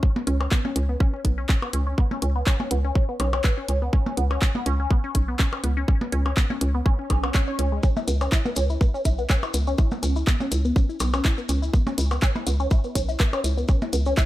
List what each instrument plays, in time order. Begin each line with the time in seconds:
0.03 synth arpeggio sound C#4, kick
0.16 synth arpeggio sound B3, percussion blips
0.27 fm bass C#2, synth arpeggio sound C#4, closed hi-hat
0.40 synth arpeggio sound C#4, percussion blips
0.51 synth arpeggio sound B3, kick, clap
0.65 synth arpeggio sound C#4, percussion blips
0.76 fm bass C#2, synth arpeggio sound C#4, closed hi-hat
0.89 synth arpeggio sound B3
1.00 synth arpeggio sound C#4, kick
1.14 synth arpeggio sound C#4
1.25 fm bass B1, synth arpeggio sound B3, kick, closed hi-hat
1.38 synth arpeggio sound C#4
1.49 synth arpeggio sound C#4, kick, clap
1.62 synth arpeggio sound B3, percussion blips
1.73 fm bass C#2, synth arpeggio sound C#4, closed hi-hat
1.87 synth arpeggio sound C#4
1.98 synth arpeggio sound B3, kick
2.11 synth arpeggio sound C#4, percussion blips
2.22 fm bass C#2, synth arpeggio sound C#4, closed hi-hat
2.36 synth arpeggio sound B3
2.47 synth arpeggio sound C#4, kick, clap
2.60 synth arpeggio sound C#4, percussion blips
2.71 fm bass C#2, synth arpeggio sound B3, closed hi-hat
2.84 synth arpeggio sound C#4
2.95 synth arpeggio sound C#4, kick
3.09 synth arpeggio sound B3
3.20 fm bass B1, synth arpeggio sound C#4, closed hi-hat, percussion blips
3.33 synth arpeggio sound C#4, percussion blips
3.44 synth arpeggio sound B3, kick, clap
3.58 synth arpeggio sound C#4
3.68 fm bass C#2, synth arpeggio sound C#4, closed hi-hat
3.82 synth arpeggio sound B3
3.93 synth arpeggio sound C#4, kick
4.06 synth arpeggio sound C#4, percussion blips
4.17 fm bass C#2, synth arpeggio sound B3, closed hi-hat
4.31 synth arpeggio sound C#4, percussion blips
4.42 synth arpeggio sound C#4, kick, clap
4.55 synth arpeggio sound B3, percussion blips
4.66 fm bass C#2, synth arpeggio sound C#4, closed hi-hat
4.80 synth arpeggio sound C#4
4.91 synth arpeggio sound B3, kick
5.04 synth arpeggio sound C#4
5.15 fm bass B1, synth arpeggio sound C#4, kick, closed hi-hat
5.28 synth arpeggio sound B3
5.39 synth arpeggio sound C#4, kick, clap
5.53 synth arpeggio sound C#4, percussion blips
5.64 fm bass C#2, synth arpeggio sound B3, closed hi-hat
5.77 synth arpeggio sound C#4
5.88 synth arpeggio sound C#4, kick
6.01 synth arpeggio sound B3, percussion blips
6.12 fm bass C#2, synth arpeggio sound C#4, closed hi-hat
6.26 synth arpeggio sound C#4, percussion blips
6.37 synth arpeggio sound B3, kick, clap
6.50 synth arpeggio sound C#4, percussion blips
6.61 fm bass C#2, synth arpeggio sound C#4, closed hi-hat
6.74 synth arpeggio sound B3
6.86 synth arpeggio sound C#4, kick, swell
6.99 synth arpeggio sound C#4
7.10 fm bass B1, synth arpeggio sound G#4, kick, closed hi-hat, percussion blips
7.23 synth arpeggio sound B3, percussion blips
7.34 synth arpeggio sound C#5, kick, clap
7.48 synth arpeggio sound C#5
7.59 fm bass C#2, synth arpeggio sound C#4, closed hi-hat
7.72 synth arpeggio sound G#3
7.83 synth arpeggio sound C#4, kick, maracas
7.96 synth arpeggio sound E4, percussion blips, maracas
8.08 fm bass C#2, synth arpeggio sound B3, closed hi-hat, maracas
8.21 synth arpeggio sound C#4, percussion blips, maracas
8.32 synth arpeggio sound E4, kick, clap, maracas
8.45 synth arpeggio sound B3, percussion blips, maracas
8.56 fm bass C#2, synth arpeggio sound C#4, closed hi-hat, maracas
8.70 synth arpeggio sound E4, maracas
8.81 synth arpeggio sound B3, kick, maracas
8.94 synth arpeggio sound C#4, maracas
9.05 fm bass B1, synth arpeggio sound E4, kick, closed hi-hat, maracas
9.18 synth arpeggio sound B3, maracas
9.30 synth arpeggio sound C#4, kick, clap, maracas
9.43 synth arpeggio sound E4, percussion blips, maracas
9.54 fm bass C#2, synth arpeggio sound B3, closed hi-hat, maracas
9.67 synth arpeggio sound C#4, maracas
9.78 synth arpeggio sound E4, kick, maracas
9.91 synth arpeggio sound B3, percussion blips, maracas
10.03 fm bass C#2, synth arpeggio sound C#4, closed hi-hat, maracas
10.16 synth arpeggio sound E4, maracas
10.27 synth arpeggio sound B3, kick, clap, maracas
10.40 synth arpeggio sound C#4, percussion blips, maracas
10.51 fm bass C#2, synth arpeggio sound E4, closed hi-hat, maracas
10.65 synth arpeggio sound B3, maracas
10.76 synth arpeggio sound C#4, kick, maracas
10.89 synth arpeggio sound E4, maracas
11.00 fm bass B1, synth arpeggio sound B3, closed hi-hat, percussion blips, maracas
11.14 synth arpeggio sound C#4, percussion blips, maracas
11.24 synth arpeggio sound E4, kick, clap, maracas
11.38 synth arpeggio sound B3, maracas
11.49 fm bass C#2, synth arpeggio sound C#4, closed hi-hat, maracas
11.62 synth arpeggio sound E4, maracas
11.73 synth arpeggio sound B3, kick, maracas
11.87 synth arpeggio sound C#4, percussion blips, maracas
11.98 fm bass C#2, synth arpeggio sound E4, closed hi-hat, maracas
12.11 synth arpeggio sound B3, percussion blips, maracas
12.22 synth arpeggio sound C#4, kick, clap, maracas
12.35 synth arpeggio sound E4, percussion blips, maracas
12.47 fm bass C#2, synth arpeggio sound B3, closed hi-hat, maracas
12.60 synth arpeggio sound C#4, maracas
12.71 synth arpeggio sound E4, kick, maracas
12.84 synth arpeggio sound B3, maracas
12.95 fm bass B1, synth arpeggio sound C#4, kick, closed hi-hat, maracas
13.09 synth arpeggio sound E4, maracas
13.19 synth arpeggio sound B3, kick, clap, maracas
13.33 synth arpeggio sound C#4, percussion blips, maracas
13.44 fm bass C#2, synth arpeggio sound E4, closed hi-hat, maracas
13.57 synth arpeggio sound B3, maracas
13.68 synth arpeggio sound C#4, kick, maracas
13.82 synth arpeggio sound E4, percussion blips, maracas
13.93 fm bass C#2, synth arpeggio sound B3, closed hi-hat, maracas
14.06 synth arpeggio sound C#4, maracas
14.17 synth arpeggio sound E4, kick, clap, maracas